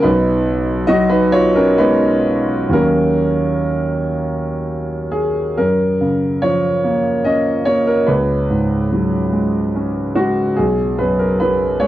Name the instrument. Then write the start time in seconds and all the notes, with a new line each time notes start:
grand piano
0.02 B1 D#4 B4
0.87 F#3 F#4 D#5
1.10 D#4 B4
1.32 F4 C#5
1.55 C#4 A#4
1.78 G#3 B3 D#4 B4
2.69 D#2 F#3 A#3 A#4
2.74 C#4
5.12 G#4
5.57 F#2 A#4
6.01 C#3
6.42 F3 C#5
6.84 A#3
7.25 C#4 D#5
7.65 A#3 C#5
7.87 A#4
8.06 C#2 B4
8.50 G#2
8.92 F#3
9.33 G#3
9.75 C#4
10.15 G#3 F#4
10.56 B1 G#4
10.99 F#2 B4
11.19 A#4
11.40 F#3 B4
11.80 G#3 C#5